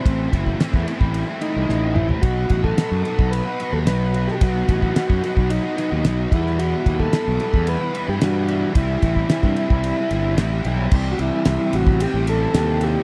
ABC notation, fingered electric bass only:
X:1
M:4/4
L:1/16
Q:1/4=110
K:none
V:1 name="Fingered electric bass" clef=bass
A,,,2 ^F,,,2 z E,, z A,,,2 z2 C,, A,,,4 | B,,,2 A,,,2 z ^F,, z B,,,2 z2 ^D,, B,,,4 | B,,,2 A,,,2 z ^F,, z B,,,2 z2 ^D,, B,,,2 E,,2- | E,,2 ^D,,2 z B,,, z E,,2 z2 G,, G,,4 |
C,,2 A,,,2 z G,, z C,,2 z G,,,2 A,,,2 B,,,2 | C,,2 C,, z C,, z A,,,3 A,,,3 ^D,,4 |]